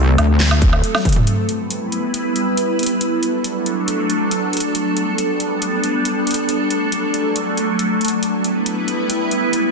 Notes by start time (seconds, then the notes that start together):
Already playing: C2 F#3 A3 C4 A4
0.18 D2, closed hi-hat, low woodblock
0.40 snare, clap, closed hi-hat
0.51 low woodblock
0.62 kick, closed hi-hat
0.73 low woodblock
0.84 closed hi-hat
0.95 snare, high tom, low woodblock
1.05 kick, closed hi-hat, mid tom
1.09 closed hi-hat
1.12 closed hi-hat, mid tom
1.27 G3 B3 E4 B4, closed hi-hat
1.49 closed hi-hat
1.70 closed hi-hat
1.92 closed hi-hat
2.14 closed hi-hat
2.36 closed hi-hat
2.57 closed hi-hat
2.79 closed hi-hat
2.83 closed hi-hat
2.86 closed hi-hat
3.01 F#3 A3 D4 A4, closed hi-hat
3.23 closed hi-hat
3.44 closed hi-hat
3.66 closed hi-hat
3.88 closed hi-hat
4.10 closed hi-hat
4.31 closed hi-hat
4.53 closed hi-hat
4.57 closed hi-hat
4.60 closed hi-hat
4.75 G3 B3 D4, closed hi-hat
4.97 closed hi-hat
5.18 closed hi-hat
5.40 closed hi-hat
5.62 closed hi-hat
5.84 closed hi-hat
6.05 closed hi-hat
6.27 closed hi-hat
6.31 closed hi-hat
6.34 closed hi-hat
6.49 F#3 A3, closed hi-hat
6.70 closed hi-hat
6.92 closed hi-hat
7.14 closed hi-hat
7.36 closed hi-hat
7.57 closed hi-hat
7.79 closed hi-hat
8.01 closed hi-hat
8.05 closed hi-hat
8.08 closed hi-hat
8.23 G3 B3 E4 B4, closed hi-hat
8.44 closed hi-hat
8.66 closed hi-hat
8.88 closed hi-hat
9.10 closed hi-hat
9.31 closed hi-hat
9.53 closed hi-hat